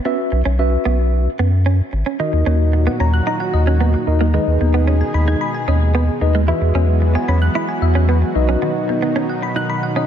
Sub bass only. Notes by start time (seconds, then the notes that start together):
0.32 B1
0.46 B1
0.86 B1
1.39 F#2
1.93 G#1
2.33 D#2
2.46 D#2
3.00 D#2
3.54 D#2
4.07 D#2
4.47 D#2
4.61 D#2
5.14 D#2
5.68 D#2
6.21 D#2
6.61 E2
6.75 E2
7.28 E2
7.82 E2
8.35 B1